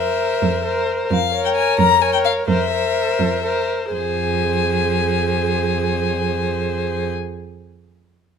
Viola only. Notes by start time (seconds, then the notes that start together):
Already playing: A#4
0.65 A#4
1.33 A#4
2.02 A#4
2.49 A#4
2.72 A#4
3.44 A#4
3.94 G#4